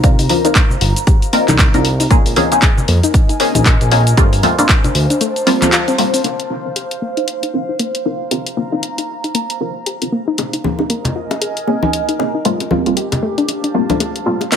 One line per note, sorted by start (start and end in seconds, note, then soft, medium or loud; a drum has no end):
0.00 0.15 C2 loud
0.00 0.17 C4 medium
0.00 0.17 D4 medium
0.00 0.17 D#4 medium
0.00 0.17 F4 medium
0.00 0.17 A#4 loud
0.00 2.94 C5 medium
0.00 2.94 F5 medium
0.00 2.94 A#5 medium
0.00 kick loud
0.00 closed hi-hat medium
0.04 shaker medium
0.19 0.27 C2 medium
0.19 0.23 D#4 medium
0.19 open hi-hat medium
0.19 shaker soft
0.29 0.41 C4 medium
0.29 0.41 D4 medium
0.29 0.41 D#4 medium
0.29 0.41 F4 medium
0.29 0.41 A#4 medium
0.29 open hi-hat loud
0.29 high conga medium
0.45 0.54 C4 medium
0.45 0.54 D4 medium
0.45 0.47 D#4 medium
0.45 0.54 D#4 medium
0.45 0.54 F4 medium
0.45 0.54 A#4 medium
0.45 closed hi-hat medium
0.45 shaker medium
0.55 0.64 A#3 loud
0.55 kick loud
0.55 clap loud
0.55 closed hi-hat medium
0.55 shaker medium
0.70 low conga medium
0.70 shaker soft
0.81 0.93 G1 medium
0.81 0.85 F4 medium
0.81 open hi-hat loud
0.96 closed hi-hat medium
0.96 shaker medium
1.07 1.13 G4 medium
1.07 kick loud
1.07 closed hi-hat medium
1.07 shaker medium
1.22 closed hi-hat soft
1.22 shaker soft
1.33 1.41 A#3 loud
1.33 1.46 C4 medium
1.33 1.46 D4 medium
1.33 1.46 D#4 medium
1.33 1.46 F4 medium
1.33 1.46 A#4 medium
1.33 open hi-hat loud
1.48 1.67 C2 medium
1.48 1.54 D#4 loud
1.48 clap soft
1.48 closed hi-hat medium
1.48 high conga medium
1.48 shaker medium
1.59 kick loud
1.59 clap loud
1.59 closed hi-hat medium
1.59 shaker medium
1.74 2.07 C2 medium
1.74 1.83 C4 medium
1.74 1.83 D4 medium
1.74 1.83 D#4 medium
1.74 1.78 D#4 medium
1.74 1.83 F4 medium
1.74 1.83 A#4 medium
1.74 closed hi-hat soft
1.74 shaker soft
1.85 open hi-hat loud
2.00 2.02 D#4 medium
2.00 open hi-hat medium
2.00 shaker medium
2.10 2.22 A#1 loud
2.10 2.34 A#3 medium
2.10 2.19 A#3 loud
2.10 2.34 C4 medium
2.10 2.34 C#4 medium
2.10 2.34 D#4 medium
2.10 2.34 G#4 medium
2.10 5.01 A#4 medium
2.10 kick loud
2.10 closed hi-hat medium
2.10 shaker medium
2.26 2.34 A#1 medium
2.26 open hi-hat medium
2.26 shaker soft
2.36 2.49 A#3 loud
2.36 2.49 C4 medium
2.36 2.50 C#4 medium
2.36 2.50 D#4 medium
2.36 2.40 F4 medium
2.36 2.50 G#4 loud
2.36 open hi-hat loud
2.36 high conga medium
2.51 3.37 A#3 medium
2.51 3.37 C4 medium
2.51 3.37 C#4 medium
2.51 3.38 D#4 medium
2.51 3.38 G#4 medium
2.51 closed hi-hat medium
2.51 shaker medium
2.62 2.68 G#4 medium
2.62 kick loud
2.62 clap loud
2.62 closed hi-hat medium
2.62 shaker medium
2.68 4.17 G#5 medium
2.77 low conga medium
2.77 shaker soft
2.87 3.00 F2 medium
2.87 2.96 A#3 loud
2.87 4.18 D#5 medium
2.87 open hi-hat loud
3.03 3.09 D#4 loud
3.03 closed hi-hat medium
3.03 shaker medium
3.14 kick loud
3.14 closed hi-hat medium
3.14 shaker medium
3.29 3.33 D#4 medium
3.29 closed hi-hat soft
3.29 shaker soft
3.40 3.59 A#3 medium
3.40 3.59 C4 medium
3.40 3.59 C#4 medium
3.40 3.59 D#4 medium
3.40 3.59 G#4 medium
3.40 open hi-hat loud
3.55 3.74 A#1 medium
3.55 3.57 D#4 medium
3.55 closed hi-hat medium
3.55 high conga medium
3.55 shaker medium
3.66 3.74 A#3 loud
3.66 kick loud
3.66 clap loud
3.66 closed hi-hat medium
3.66 shaker medium
3.81 4.14 A#1 loud
3.81 closed hi-hat soft
3.81 shaker soft
3.91 4.05 A#3 medium
3.91 4.05 C4 medium
3.91 4.05 C#4 medium
3.91 4.05 D#4 medium
3.91 3.95 F4 medium
3.91 4.05 G#4 medium
3.91 open hi-hat loud
4.07 closed hi-hat medium
4.07 shaker medium
4.17 4.29 G1 loud
4.17 4.31 G3 medium
4.17 4.31 A3 medium
4.17 4.31 A#3 medium
4.17 4.31 C4 medium
4.17 4.31 F4 loud
4.17 4.23 G4 medium
4.17 11.22 C5 medium
4.17 kick loud
4.17 closed hi-hat medium
4.17 shaker medium
4.32 4.41 G1 medium
4.32 open hi-hat medium
4.32 shaker soft
4.42 4.55 G3 medium
4.42 4.55 A3 medium
4.42 4.52 A3 loud
4.42 4.55 A#3 medium
4.42 4.55 C4 medium
4.42 4.55 F4 medium
4.42 11.22 F5 medium
4.42 open hi-hat loud
4.42 high conga medium
4.58 4.68 G3 medium
4.58 4.68 A3 medium
4.58 4.68 A#3 medium
4.58 4.68 C4 medium
4.58 4.64 D4 loud
4.58 4.68 F4 medium
4.58 closed hi-hat medium
4.58 shaker medium
4.69 kick loud
4.69 clap loud
4.69 closed hi-hat medium
4.69 shaker medium
4.84 4.88 D4 medium
4.84 closed hi-hat soft
4.84 low conga medium
4.84 shaker soft
4.95 5.07 D2 medium
4.95 open hi-hat loud
5.10 5.13 D4 medium
5.10 6.24 A5 medium
5.10 closed hi-hat medium
5.10 shaker medium
5.21 5.29 A3 loud
5.21 closed hi-hat medium
5.21 shaker medium
5.36 closed hi-hat soft
5.36 shaker soft
5.47 5.58 G3 loud
5.47 5.58 A3 medium
5.47 5.58 A#3 medium
5.47 5.50 C4 medium
5.47 5.58 C4 medium
5.47 5.58 F4 loud
5.47 open hi-hat loud
5.62 5.96 G3 medium
5.62 5.96 A3 medium
5.62 5.96 A#3 medium
5.62 5.96 C4 medium
5.62 5.96 F4 loud
5.62 clap soft
5.62 closed hi-hat medium
5.62 high conga medium
5.62 shaker medium
5.73 5.81 F4 loud
5.73 clap loud
5.73 closed hi-hat medium
5.73 shaker medium
5.88 5.92 C4 loud
5.88 closed hi-hat soft
5.88 shaker soft
5.98 6.12 G3 medium
5.98 6.12 A3 medium
5.98 6.12 A#3 medium
5.98 6.02 C4 medium
5.98 6.12 C4 medium
5.98 6.12 F4 medium
5.98 open hi-hat loud
6.14 6.17 C4 medium
6.14 open hi-hat medium
6.14 shaker medium
6.24 6.32 A#3 loud
6.24 6.48 C4 medium
6.24 6.48 D4 medium
6.24 6.48 D#4 medium
6.24 6.48 F4 medium
6.24 6.48 A#4 medium
6.24 closed hi-hat medium
6.40 closed hi-hat medium
6.50 6.63 C4 medium
6.50 6.63 D4 medium
6.50 6.63 D#4 medium
6.50 6.53 F4 medium
6.50 6.63 F4 medium
6.50 6.63 A#4 loud
6.65 7.51 C4 medium
6.65 7.51 D4 medium
6.65 7.51 D#4 medium
6.65 7.51 F4 medium
6.65 7.51 A#4 medium
6.76 6.81 G4 medium
6.76 closed hi-hat medium
6.91 closed hi-hat soft
7.02 7.10 A#3 loud
7.17 7.23 D#4 loud
7.17 closed hi-hat soft
7.28 closed hi-hat medium
7.43 7.47 D#4 medium
7.43 closed hi-hat medium
7.54 7.73 C4 medium
7.54 7.73 D4 medium
7.54 7.73 D#4 medium
7.54 7.73 F4 medium
7.54 7.73 A#4 medium
7.69 7.71 D#4 medium
7.79 7.88 A#3 loud
7.79 closed hi-hat medium
7.95 closed hi-hat medium
8.02 8.19 C4 medium
8.02 8.19 D4 medium
8.02 8.19 D#4 medium
8.02 8.09 F4 medium
8.02 8.19 F4 medium
8.02 8.19 A#4 medium
8.02 11.22 A#5 medium
8.31 8.44 C4 medium
8.31 8.44 D4 medium
8.31 8.45 D#4 medium
8.31 8.45 F4 medium
8.31 8.37 G4 medium
8.31 8.45 A#4 loud
8.31 closed hi-hat medium
8.46 closed hi-hat medium
8.57 8.65 A#3 loud
8.57 8.69 C4 medium
8.57 8.69 D4 medium
8.57 8.69 D#4 medium
8.57 8.69 F4 medium
8.57 8.69 A#4 medium
8.72 8.82 C4 medium
8.72 8.82 D4 medium
8.72 8.78 D#4 loud
8.72 8.82 D#4 medium
8.72 8.82 F4 medium
8.72 8.82 A#4 medium
8.83 closed hi-hat medium
8.98 9.02 D#4 medium
8.98 closed hi-hat soft
9.24 9.26 D#4 medium
9.24 closed hi-hat soft
9.35 9.43 A#3 loud
9.35 closed hi-hat medium
9.50 closed hi-hat soft
9.60 9.74 C4 medium
9.60 9.74 D4 medium
9.60 9.74 D#4 medium
9.60 9.64 F4 medium
9.60 9.74 F4 medium
9.60 9.74 A#4 medium
9.86 9.92 G4 medium
9.86 closed hi-hat medium
10.02 10.11 C4 medium
10.02 10.11 D4 medium
10.02 10.11 D#4 medium
10.02 10.11 F4 medium
10.02 10.11 A#4 medium
10.02 closed hi-hat soft
10.12 10.20 A#3 loud
10.27 10.33 D#4 loud
10.38 10.61 A#3 medium
10.38 10.61 C4 medium
10.38 10.62 C#4 medium
10.38 10.62 D#4 medium
10.38 10.62 G#4 medium
10.38 13.29 A#4 medium
10.38 closed hi-hat medium
10.38 high bongo medium
10.53 10.57 D#4 medium
10.53 closed hi-hat medium
10.64 10.77 A#3 medium
10.64 10.77 C4 medium
10.64 10.77 C#4 medium
10.64 10.77 D#4 medium
10.64 10.77 G#4 loud
10.64 high conga medium
10.71 12.45 D#5 medium
10.79 11.65 A#3 medium
10.79 11.65 C4 medium
10.79 11.65 C#4 medium
10.79 10.82 D#4 medium
10.79 11.65 D#4 medium
10.79 11.65 G#4 medium
10.79 high bongo soft
10.90 10.98 A#3 loud
10.90 closed hi-hat medium
11.05 12.45 G#5 medium
11.05 closed hi-hat soft
11.05 low conga medium
11.16 11.19 F4 medium
11.31 closed hi-hat soft
11.31 high bongo medium
11.42 11.47 G#4 medium
11.42 closed hi-hat medium
11.57 closed hi-hat medium
11.67 11.76 A#3 medium
11.67 11.87 A#3 medium
11.67 11.87 C4 medium
11.67 11.87 C#4 medium
11.67 11.87 D#4 medium
11.67 11.87 G#4 medium
11.67 high bongo soft
11.83 11.88 D#4 loud
11.83 high conga medium
11.93 closed hi-hat medium
12.09 12.12 D#4 medium
12.09 closed hi-hat soft
12.19 12.32 A#3 medium
12.19 12.33 C4 medium
12.19 12.33 C#4 medium
12.19 12.33 D#4 medium
12.19 12.33 G#4 medium
12.19 high bongo medium
12.35 12.37 D#4 medium
12.45 12.58 G3 loud
12.45 12.58 A3 medium
12.45 12.53 A3 loud
12.45 12.58 A#3 medium
12.45 12.58 C4 medium
12.45 12.59 F4 loud
12.45 14.56 G4 medium
12.45 closed hi-hat medium
12.60 closed hi-hat soft
12.60 high bongo soft
12.71 12.83 G3 medium
12.71 12.83 A3 medium
12.71 12.83 A#3 medium
12.71 12.83 C4 medium
12.71 12.74 F4 medium
12.71 12.83 F4 medium
12.71 high conga medium
12.86 12.95 G3 medium
12.86 12.95 A3 medium
12.86 12.96 A#3 medium
12.86 12.96 C4 medium
12.86 12.96 F4 medium
12.86 closed hi-hat soft
12.97 13.02 G4 medium
12.97 closed hi-hat medium
13.12 closed hi-hat soft
13.12 high bongo medium
13.12 low conga medium
13.20 13.31 A3 loud
13.20 14.56 C5 medium
13.38 13.44 D4 loud
13.38 14.56 F5 medium
13.38 14.52 A5 medium
13.38 closed hi-hat soft
13.48 closed hi-hat medium
13.48 high bongo soft
13.64 13.68 D4 medium
13.64 closed hi-hat soft
13.74 13.86 G3 medium
13.74 13.86 A3 medium
13.74 13.86 A#3 medium
13.74 13.86 C4 medium
13.74 13.86 F4 loud
13.90 14.24 G3 medium
13.90 14.24 A3 medium
13.90 14.24 A#3 medium
13.90 14.24 C4 medium
13.90 13.92 D4 medium
13.90 14.24 F4 loud
13.90 closed hi-hat soft
13.90 high conga medium
14.00 14.08 A3 loud
14.00 closed hi-hat medium
14.00 high bongo medium
14.16 closed hi-hat soft
14.26 14.39 G3 medium
14.26 14.39 A3 medium
14.26 14.39 A#3 medium
14.26 14.40 C4 medium
14.26 14.29 F4 medium
14.26 14.40 F4 medium
14.41 closed hi-hat soft
14.41 high bongo medium
14.52 14.56 C2 loud
14.52 14.56 A#3 loud
14.52 14.56 C4 medium
14.52 14.56 D4 medium
14.52 14.56 D#4 medium
14.52 14.56 F4 medium
14.52 14.56 A#4 medium
14.52 clap soft
14.52 closed hi-hat medium
14.52 shaker medium